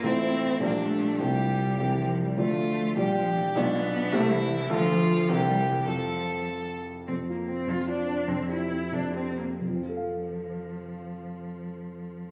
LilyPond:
<<
  \new Staff \with { instrumentName = "Violin" } { \time 6/8 \key f \major \tempo 4. = 101 e'4. d'4. | g'2~ g'16 r8. | f'4. g'4. | d'4. e'4. |
f'4. g'4. | a'2~ a'16 r8. | r2. | r2. |
r2. | r2. | }
  \new Staff \with { instrumentName = "Grand piano" } { \time 6/8 \key f \major <a,, a c' f'>4. <bes,, g d' f'>4. | <c, g c' f'>4. <c, g c' g'>4. | <d, f f' d''>4. <bes,, g f' d''>4. | <b,, gis f' d''>4. <c, g g' c''>4. |
<d, a f' a'>4. <c, c' g' bes'>4. | <f, c' f' a'>2. | f,8 f'8 c'8 f,8 f'8 c'8 | f,8 g'8 c'8 f,8 g'8 c'8 |
<f, f c' f' a' f''>2.~ | <f, f c' f' a' f''>2. | }
  \new Staff \with { instrumentName = "Cello" } { \time 6/8 \key f \major c'8 c'4 bes8 a4 | g4. e8 f8 g8 | a8 a4 g8 f8 e8 | b8 b4 a8 e4 |
f8 f4 e8 g8 e8 | f4. r4. | c'8 bes8 c'8 f'8 d'4 | c'8 e'4 d'8 c'8 bes8 |
f2.~ | f2. | }
>>